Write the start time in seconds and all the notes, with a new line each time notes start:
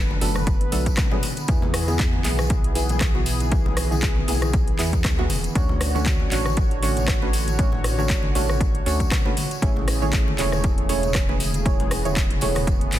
Already playing: F#1 D3 F#3 A3 B3 D4 A4 B4
0.11 high conga
0.21 F#1 F#3 A3 B3 D4 A4, open hi-hat, tambourine, muted conga, low conga
0.35 cross-stick, tambourine, high conga
0.47 kick, closed hi-hat, tambourine
0.61 closed hi-hat
0.72 B1 F#3 A3 B3 D4 A4, open hi-hat, tambourine, muted conga
0.86 kick, closed hi-hat, tambourine
0.97 kick, cross-stick, clap, closed hi-hat, tambourine, low conga
1.11 F#3 A3 B3 D4 G#4, muted conga, low conga
1.23 open hi-hat, tambourine, high conga
1.37 closed hi-hat, tambourine
1.48 E2 E3 B3 E4 G#4, kick, closed hi-hat, muted conga
1.62 high conga, low conga
1.74 cross-stick, open hi-hat, tambourine
1.88 B3 E4 G#4, tambourine, muted conga, high conga
1.99 kick, clap, closed hi-hat, tambourine
2.13 high conga
2.24 B1 B3 E4 G#4, clap, open hi-hat, tambourine, muted conga, low conga
2.38 cross-stick, tambourine, high conga
2.50 kick, closed hi-hat, tambourine
2.64 closed hi-hat
2.75 B3 E4 G#4, open hi-hat, tambourine, muted conga, high conga
2.89 closed hi-hat, tambourine, low conga
3.01 kick, cross-stick, clap, closed hi-hat
3.15 B3 E4 F#4, muted conga
3.26 open hi-hat, tambourine
3.40 closed hi-hat, tambourine, high conga
3.51 B3 E4 G#4, kick, closed hi-hat, tambourine, muted conga
3.66 high conga, low conga
3.77 cross-stick, open hi-hat, tambourine
3.91 B3 E4 G#4, tambourine, muted conga, high conga
4.02 kick, clap, closed hi-hat, tambourine
4.16 high conga
4.28 B1 B3 E4 G#4, open hi-hat, tambourine, muted conga, low conga
4.42 cross-stick, closed hi-hat, tambourine, high conga
4.53 kick, closed hi-hat
4.68 closed hi-hat
4.79 E2 B3 E4 G#4, clap, open hi-hat, tambourine, muted conga
4.93 kick, closed hi-hat, tambourine
5.04 D2, kick, cross-stick, clap, closed hi-hat, tambourine, low conga
5.18 B3 E4 F#4, muted conga, low conga
5.30 E1, open hi-hat, tambourine, high conga
5.44 closed hi-hat, tambourine
5.55 D2 D3 A3 C#4 D4 F#4 C#5, kick, closed hi-hat, tambourine, muted conga
5.69 high conga, low conga
5.81 cross-stick, open hi-hat, tambourine
5.95 A3 C#4 D4 F#4 C#5, tambourine, muted conga, high conga
6.06 kick, clap, closed hi-hat
6.20 high conga
6.31 A1 A3 C#4 D4 F#4 C#5, clap, open hi-hat, tambourine, muted conga, low conga
6.46 cross-stick, tambourine, high conga
6.57 kick, closed hi-hat
6.71 closed hi-hat
6.82 A3 C#4 D4 F#4 C#5, open hi-hat, tambourine, muted conga, high conga
6.97 closed hi-hat, tambourine, low conga
7.08 kick, cross-stick, clap, closed hi-hat
7.22 A3 C#4 D4 F#4 B4, muted conga
7.33 open hi-hat, tambourine
7.47 closed hi-hat, tambourine, high conga
7.59 A3 C#4 D4 F#4 C#5, kick, closed hi-hat, tambourine, muted conga
7.72 high conga, low conga
7.84 cross-stick, open hi-hat, tambourine
7.98 A3 C#4 D4 F#4 C#5, tambourine, muted conga, high conga
8.10 kick, clap, closed hi-hat, tambourine
8.23 high conga
8.35 A1 A3 C#4 D4 F#4 C#5, open hi-hat, tambourine, muted conga, low conga
8.49 cross-stick, tambourine, high conga
8.61 kick, closed hi-hat, tambourine
8.75 closed hi-hat
8.86 D2 A3 C#4 D4 F#4 C#5, open hi-hat, tambourine, muted conga
9.00 kick, closed hi-hat, tambourine
9.11 kick, cross-stick, clap, closed hi-hat, tambourine, low conga
9.25 A3 C#4 D4 F#4 B4, muted conga, low conga
9.37 open hi-hat, tambourine, high conga
9.51 closed hi-hat, tambourine
9.62 A1 C#3 A3 C#4 E4 G#4 C#5, kick, closed hi-hat, muted conga
9.76 high conga, low conga
9.88 cross-stick, open hi-hat, tambourine
10.02 A3 C#4 E4 G#4 C#5, tambourine, muted conga, high conga
10.13 kick, clap, closed hi-hat
10.28 high conga
10.38 E1 A3 C#4 E4 G#4 C#5, clap, open hi-hat, tambourine, muted conga, low conga
10.52 cross-stick, tambourine, high conga
10.64 kick, closed hi-hat, tambourine
10.78 closed hi-hat
10.89 A3 C#4 E4 G#4 C#5, open hi-hat, tambourine, muted conga, high conga
11.03 closed hi-hat, tambourine, low conga
11.15 kick, cross-stick, clap, closed hi-hat, tambourine
11.29 A3 C#4 E4 G#4 B4, muted conga
11.40 open hi-hat, tambourine
11.54 closed hi-hat, tambourine, high conga
11.66 A3 B3 C#4 E4 G#4 C#5, kick, closed hi-hat, muted conga
11.80 closed hi-hat, high conga, low conga
11.91 cross-stick, open hi-hat, tambourine
12.05 A3 C#4 E4 G#4 C#5, closed hi-hat, tambourine, muted conga, high conga
12.16 kick, clap, closed hi-hat
12.31 closed hi-hat, high conga
12.41 E1 A3 C#4 E4 G#4 C#5, open hi-hat, tambourine, muted conga, low conga
12.55 cross-stick, open hi-hat, tambourine, high conga
12.67 kick, closed hi-hat, tambourine
12.81 closed hi-hat
12.92 A1, clap, open hi-hat, tambourine, muted conga